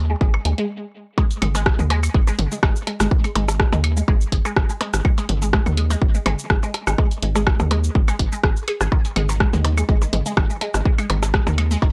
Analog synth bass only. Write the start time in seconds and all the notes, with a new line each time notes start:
Already playing: D#2
0.21 G#1
0.45 D#2
1.42 G#1
1.79 D#2
2.14 G#1
2.39 G#1
2.63 G#1
3.00 G#1
3.35 G#1
3.73 D#2
4.08 G#1
4.32 G#1
4.56 G#1
4.94 G#1
5.29 G#1
5.66 D#2
6.02 G#1
6.26 G#1
6.50 G#1
6.87 G#1
7.23 G#1
7.60 D#2
7.95 G#1
8.19 G#1
8.44 G#1
8.81 G#1
9.16 G#1
9.53 D#2
9.89 G#1
10.13 G#1
10.37 G#1
10.74 G#1
11.10 G#1
11.47 D#2
11.82 G#1